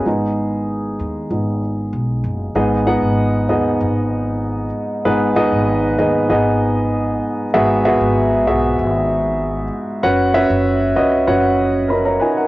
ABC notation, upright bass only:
X:1
M:4/4
L:1/16
Q:1/4=96
K:G#m
V:1 name="Upright bass" clef=bass
G,,,6 D,,2 G,,,4 B,,,2 F,,,2 | G,,,3 G,,,3 D,,2 G,,,6 z2 | G,,,3 G,,,3 D,,2 G,,,6 z2 | G,,,3 G,,,3 B,,,2 G,,,6 z2 |
F,,,3 F,,,3 C,,2 F,,,6 z2 |]